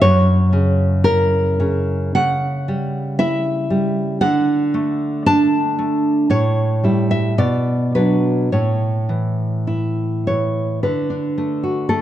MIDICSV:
0, 0, Header, 1, 2, 480
1, 0, Start_track
1, 0, Key_signature, 2, "major"
1, 0, Tempo, 1020408
1, 16, Time_signature, 2, 2, 24, 8
1, 496, Tempo, 1107011
1, 976, Tempo, 1038062
1, 2896, Tempo, 1081081
1, 3376, Tempo, 1147228
1, 4816, Tempo, 1067616
1, 5346, End_track
2, 0, Start_track
2, 0, Title_t, "Nylon-string guitar"
2, 0, Program_c, 0, 24
2, 7, Note_on_c, 0, 73, 127
2, 10, Note_on_c, 0, 42, 86
2, 247, Note_on_c, 0, 49, 61
2, 473, Note_off_c, 0, 73, 0
2, 490, Note_on_c, 0, 64, 75
2, 490, Note_on_c, 0, 70, 125
2, 726, Note_off_c, 0, 49, 0
2, 731, Note_on_c, 0, 49, 70
2, 955, Note_off_c, 0, 70, 0
2, 956, Note_off_c, 0, 42, 0
2, 967, Note_off_c, 0, 49, 0
2, 970, Note_on_c, 0, 78, 113
2, 973, Note_off_c, 0, 64, 0
2, 973, Note_on_c, 0, 49, 77
2, 1217, Note_on_c, 0, 55, 64
2, 1435, Note_off_c, 0, 78, 0
2, 1451, Note_on_c, 0, 76, 127
2, 1453, Note_on_c, 0, 64, 86
2, 1684, Note_off_c, 0, 55, 0
2, 1689, Note_on_c, 0, 55, 63
2, 1910, Note_off_c, 0, 49, 0
2, 1910, Note_off_c, 0, 76, 0
2, 1921, Note_off_c, 0, 64, 0
2, 1923, Note_on_c, 0, 78, 119
2, 1925, Note_on_c, 0, 50, 87
2, 1929, Note_off_c, 0, 55, 0
2, 2169, Note_on_c, 0, 57, 58
2, 2392, Note_off_c, 0, 78, 0
2, 2411, Note_on_c, 0, 62, 79
2, 2411, Note_on_c, 0, 81, 127
2, 2646, Note_off_c, 0, 57, 0
2, 2652, Note_on_c, 0, 57, 52
2, 2874, Note_off_c, 0, 50, 0
2, 2875, Note_off_c, 0, 81, 0
2, 2887, Note_off_c, 0, 62, 0
2, 2888, Note_on_c, 0, 45, 74
2, 2891, Note_on_c, 0, 73, 109
2, 2894, Note_off_c, 0, 57, 0
2, 3127, Note_on_c, 0, 55, 53
2, 3132, Note_on_c, 0, 64, 52
2, 3236, Note_off_c, 0, 73, 0
2, 3248, Note_on_c, 0, 76, 98
2, 3356, Note_off_c, 0, 55, 0
2, 3357, Note_off_c, 0, 64, 0
2, 3358, Note_off_c, 0, 45, 0
2, 3370, Note_on_c, 0, 47, 83
2, 3371, Note_on_c, 0, 74, 102
2, 3373, Note_off_c, 0, 76, 0
2, 3598, Note_off_c, 0, 74, 0
2, 3608, Note_on_c, 0, 71, 91
2, 3610, Note_on_c, 0, 54, 46
2, 3613, Note_on_c, 0, 62, 46
2, 3834, Note_off_c, 0, 47, 0
2, 3834, Note_off_c, 0, 54, 0
2, 3835, Note_off_c, 0, 62, 0
2, 3840, Note_off_c, 0, 71, 0
2, 3848, Note_on_c, 0, 73, 73
2, 3850, Note_on_c, 0, 45, 65
2, 4085, Note_on_c, 0, 52, 46
2, 4317, Note_off_c, 0, 73, 0
2, 4329, Note_on_c, 0, 64, 56
2, 4574, Note_off_c, 0, 52, 0
2, 4579, Note_on_c, 0, 52, 41
2, 4579, Note_on_c, 0, 73, 74
2, 4800, Note_off_c, 0, 45, 0
2, 4806, Note_off_c, 0, 73, 0
2, 4813, Note_off_c, 0, 64, 0
2, 4813, Note_on_c, 0, 50, 52
2, 4813, Note_on_c, 0, 71, 66
2, 4816, Note_off_c, 0, 52, 0
2, 4934, Note_on_c, 0, 62, 44
2, 5059, Note_on_c, 0, 57, 46
2, 5175, Note_on_c, 0, 66, 47
2, 5277, Note_off_c, 0, 71, 0
2, 5285, Note_off_c, 0, 57, 0
2, 5289, Note_on_c, 0, 69, 93
2, 5290, Note_on_c, 0, 57, 56
2, 5346, Note_off_c, 0, 50, 0
2, 5346, Note_off_c, 0, 57, 0
2, 5346, Note_off_c, 0, 62, 0
2, 5346, Note_off_c, 0, 66, 0
2, 5346, Note_off_c, 0, 69, 0
2, 5346, End_track
0, 0, End_of_file